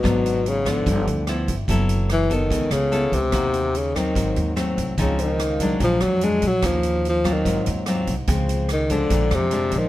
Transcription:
<<
  \new Staff \with { instrumentName = "Grand piano" } { \time 4/4 \key des \major \tempo 4 = 146 r1 | r1 | r1 | r8 c''16 ees''16 f''4~ f''16 r4. r16 |
r2 ees''4~ ees''16 r8. | r2. r8 c''8 | }
  \new Staff \with { instrumentName = "Nylon-string guitar" } { \time 4/4 \key des \major << { <ges ces' d'>4. <f ces' fes'>4. <f b e'>8 r8 | <ces' fes' a'>4 r8 <ces' a'>4. <ces' fes' a'>8 r8 | <bes ges'>4 r8 <ges c'>4. <ges a c'>4 | <f c' ees'>4 r8 <ges aes d'>4. <ges aes d'>8 r8 |
<bes des'>4. <ges c' f'>4. <ges c' f'>8 r8 | <f aes c'>4 r8 <f aes d'>4. <f aes d'>4 | } \\ { aes,2 g,2 | ges2 des2 | ees2 aes,2 | des2 bes,2 |
ees2 aes,2 | des2 bes,2 | } >> }
  \new Staff \with { instrumentName = "Tenor saxophone" } { \clef bass \time 4/4 \key des \major ces4 des8 d4. r4 | r4 fes8 ees4 des4 c8~ | c4 des8 ees4. r4 | des8 ees4. f8 ges8 aes8 ges8 |
f4 f8 ees4 r4. | r4 ees8 d4 c4 ees8 | }
  \new Staff \with { instrumentName = "Upright bass" } { \clef bass \time 4/4 \key des \major aes,,2 g,,8 d,4 g,,8 | ges,,2 des,8 des,4 des,8 | ees,2 aes,,8 ees,4 c,8 | des,2 bes,,8 f,4 bes,,8 |
ees,2 aes,,8 ees,4 c,8 | des,2 bes,,8 f,4 bes,,8 | }
  \new DrumStaff \with { instrumentName = "Drums" } \drummode { \time 4/4 <hh bd ss>8 hh8 hh8 <hh bd ss>8 <hh bd>8 hh8 <hh ss>8 <hh bd>8 | <hh bd>8 hh8 <hh ss>8 <hh bd>8 <hh bd>8 <hh ss>8 hh8 <hh bd>8 | <hh bd ss>8 hh8 hh8 <hh bd ss>8 <hh bd>8 hh8 <hh ss>8 <hh bd>8 | <hh bd>8 hh8 <hh ss>8 <hh bd>8 <hh bd>8 <hh ss>8 hh8 <hh bd>8 |
<hh bd ss>8 hh8 hh8 <hh bd ss>8 <hh bd>8 hh8 <hh ss>8 <hh bd>8 | <hh bd>8 hh8 <hh ss>8 <hh bd>8 <hh bd>8 <hh ss>8 hh8 <hh bd>8 | }
>>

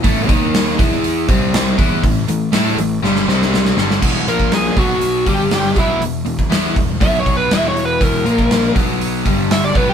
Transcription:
<<
  \new Staff \with { instrumentName = "Lead electric guitar" } { \time 4/4 \key a \major \tempo 4 = 120 r1 | r1 | \key b \mixolydian r8 ais'8 gis'8 fis'4 g'8 g'8 e'8 | r2 \tuplet 3/2 { e''8 cis''8 b'8 e''8 cis''8 b'8 } |
ais'4. r4. e''16 d''16 b'16 g'16 | }
  \new Staff \with { instrumentName = "Overdriven electric guitar" } { \clef bass \time 4/4 \key a \major <a, e a>8 <dis ais dis'>4 <e b e'>4 <c g c'>4 <e b e'>8 | <a, e>8 <a, e>8 <a e' a'>8 <a, e>8 <g, d g>8 <c g c'>4 <g, d g>8 | \key b \mixolydian <e, b, e>8 <ais, eis ais>4 <b, fis b>4 <g, d g>4 <b, fis b>8 | <e, b,>8 <e, b,>8 <e b e'>8 <e, b,>8 <b, fis b>4 <e, b, e>4 |
<e, b, e>8 <ais, eis ais>4 <b, fis b>4 <g, d g>4 <b, fis b>8 | }
  \new Staff \with { instrumentName = "Overdriven electric guitar" } { \clef bass \time 4/4 \key a \major <a, e a>8 <dis ais dis'>4 <e b e'>4 <c g c'>4 <e b e'>8 | <a, e>8 <a, e>8 <a e' a'>8 <a, e>8 <g, d g>8 <c g c'>4 <g, d g>8 | \key b \mixolydian <e, b, e>8 <ais, eis ais>4 <b, fis b>4 <g, d g>4 <b, fis b>8 | <e, b,>8 <e, b,>8 <e b e'>8 <e, b,>8 <b, fis b>4 <e, b, e>4 |
<e, b, e>8 <ais, eis ais>4 <b, fis b>4 <g, d g>4 <b, fis b>8 | }
  \new Staff \with { instrumentName = "Picked electric bass" } { \clef bass \time 4/4 \key a \major a,,8 dis,4 e,4 c,4 e,8 | a,,8 a,,8 a,8 a,,8 g,,8 c,4 g,,8 | \key b \mixolydian e,,8 ais,,4 b,,4 g,,4 b,,8 | e,,8 e,,8 e,8 e,,8 b,,4 e,,4 |
e,,8 ais,,4 b,,4 g,,4 b,,8 | }
  \new DrumStaff \with { instrumentName = "Drums" } \drummode { \time 4/4 <hho bd>8 <hho bd>8 <hho sn>8 <hho bd>8 hho8 <hho bd>8 <hho sn>8 <hho bd>8 | <hho bd>8 hho8 <hho sn>8 hho8 sn16 sn16 sn16 sn16 sn16 sn16 sn16 sn16 | <cymc bd>8 hho16 bd16 <hho sn>8 <hho bd>8 hho8 <hho bd>8 <hho sn>8 <hho bd>8 | hho8 hho16 bd16 <hho sn>8 <hho bd>8 <hho bd>8 <hho bd>8 <hho sn>8 hho8 |
<hho bd>8 hho16 bd16 <hho sn>8 <hho bd>8 hho8 <hho bd>8 <hho sn>8 <hho bd>8 | }
>>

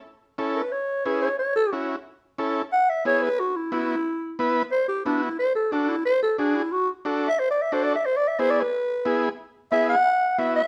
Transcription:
<<
  \new Staff \with { instrumentName = "Clarinet" } { \time 4/4 \key a \major \tempo 4 = 180 r4. b'8 cis''4 b'8 cis''8 | cis''8 a'8 r2. | fis''8 e''8 cis''8 b'8 fis'8 e'8 e'4~ | e'4 r4 c''8 g'8 d'8 e'8 |
c''8 a'8 d'8 e'8 c''8 a'8 d'8 e'8 | fis'8 r8 \tuplet 3/2 { r4 e''8 c''8 d''8 e''8 c''8 d''8 e''8 } | \tuplet 3/2 { c''8 d''8 e''8 c''8 d''8 b'8~ } b'4. r8 | r4 e''8 fis''4. e''8 e''8 | }
  \new Staff \with { instrumentName = "Transistor combo organ" } { \time 4/4 \key a \major r4 <cis' e' a'>8 r4. <cis' e' gis'>8 r8 | r4 <cis' e' fis'>8 r4. <cis' e' a'>8 r8 | r4 <b e' gis'>8 r4. <b e' fis'>8 r8 | r4 <b e' b'>8 r4. <b e' fis'>8 r8 |
r4 <d' fis' a'>8 r4. <d' fis' gis'>8 r8 | r4 <d' fis' a'>8 r4. <d' fis' a'>8 r8 | r4 <b e' gis'>8 r4. <b e' gis'>8 r8 | r4 <b e' gis'>8 r4. <b e' fis'>8 r8 | }
>>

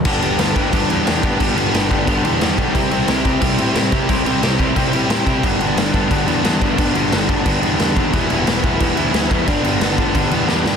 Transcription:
<<
  \new Staff \with { instrumentName = "Distorted electric guitar" } { \clef bass \time 4/4 \key g \major \tempo 4 = 178 <g, d g b d' g'>8 <g, d g b d' g'>8 <g, d g b d' g'>8 <g, d g b d' g'>8 <g, d g b d' g'>8 <g, d g b d' g'>8 <g, d g b d' g'>8 <g, d g b d' g'>8 | <g, d g b d' g'>8 <g, d g b d' g'>8 <g, d g b d' g'>8 <g, d g b d' g'>8 <g, d g b d' g'>8 <g, d g b d' g'>8 <g, d g b d' g'>8 <g, d g b d' g'>8 | <c g c' e' g'>8 <c g c' e' g'>8 <c g c' e' g'>8 <c g c' e' g'>8 <c g c' e' g'>8 <c g c' e' g'>8 <c g c' e' g'>8 <c g c' e' g'>8 | <c g c' e' g'>8 <c g c' e' g'>8 <c g c' e' g'>8 <c g c' e' g'>8 <c g c' e' g'>8 <c g c' e' g'>8 <c g c' e' g'>8 <c g c' e' g'>8 |
<g, d g b d'>8 <g, d g b d'>8 <g, d g b d'>8 <g, d g b d'>8 <g, d g b d'>8 <g, d g b d'>8 <g, d g b d'>8 <g, d g b d'>8 | <g, d g b d'>8 <g, d g b d'>8 <g, d g b d'>8 <g, d g b d'>8 <g, d g b d'>8 <g, d g b d'>8 <g, d g b d'>8 <g, d g b d'>8 | <e g b e'>8 <e g b e'>8 <e g b e'>8 <e g b e'>8 <e g b e'>8 <e g b e'>8 <e g b e'>8 <e g b e'>8 | <g, d g b d'>8 <g, d g b d'>8 <g, d g b d'>8 <g, d g b d'>8 <g, d g b d'>8 <g, d g b d'>8 <g, d g b d'>8 <g, d g b d'>8 | }
  \new Staff \with { instrumentName = "Picked electric bass" } { \clef bass \time 4/4 \key g \major g,,8 g,,8 g,,8 g,,8 g,,8 e,8 e,8 g,8 | g,,8 g,,8 g,,8 g,,8 g,,8 e,8 e,8 b,,8 | c,8 c,8 c,8 c,8 c,8 a,8 a,8 c8 | c,8 c,8 c,8 c,8 c,8 a,8 a,8 c8 |
g,,8 g,,8 g,,8 g,,8 g,,8 e,8 e,8 g,8 | g,,8 g,,8 g,,8 g,,8 g,,8 e,8 e,8 ees,8 | e,,8 e,,8 e,,8 e,,8 e,,8 d,8 d,8 e,8 | g,,8 g,,8 g,,8 g,,8 g,,8 e,8 e,8 g,8 | }
  \new DrumStaff \with { instrumentName = "Drums" } \drummode { \time 4/4 <cymc bd>8 cymc8 <cymc sn>8 <cymc bd>8 <cymc bd>8 cymc8 <cymc sn>8 <cymc bd>8 | <cymc bd>8 cymc8 <cymc sn>8 <cymc bd>8 <cymc bd>8 cymc8 <cymc sn>8 <cymc bd>8 | <cymc bd>8 cymc8 <cymc sn>8 <cymc bd>8 <cymc bd>8 cymc8 <cymc sn>8 <cymc bd>8 | <cymc bd>8 cymc8 <cymc sn>8 <cymc bd>8 <cymc bd>8 cymc8 <cymc sn>8 <cymc bd>8 |
<cymc bd>8 cymc8 <cymc sn>8 <cymc bd>8 <cymc bd>8 cymc8 <cymc sn>8 <cymc bd>8 | <cymc bd>8 cymc8 <cymc sn>8 <cymc bd>8 <cymc bd>8 cymc8 <cymc sn>8 <cymc bd>8 | <cymc bd>8 cymc8 <cymc sn>8 <cymc bd>8 <cymc bd>8 cymc8 <cymc sn>8 <cymc bd>8 | <cymc bd>8 cymc8 <cymc sn>8 <cymc bd>8 <cymc bd>8 cymc8 sn8 sn8 | }
>>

